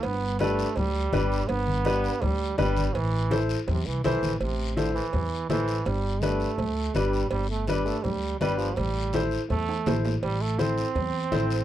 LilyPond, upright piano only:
\new Staff \with { instrumentName = "Upright piano" } { \time 4/4 \key a \minor \tempo 4 = 165 r4 <d' g' b'>8 r4. <d' g' b'>8 r8 | r4 <d' g' b'>8 r4. <d' g' b'>8 r8 | r4 <e' a' c''>8 r4. <e' a' c''>8 r8 | r4 <e' a' c''>8 r4. <e' a' c''>8 r8 |
r4 <d' g' b'>8 r4. <d' g' b'>8 r8 | r4 <d' g' b'>8 r4. <d' g' b'>8 r8 | r4 <e' a' c''>8 r4. <e' a' c''>8 r8 | r4 <e' a' c''>8 r4. <e' a' c''>8 r8 | }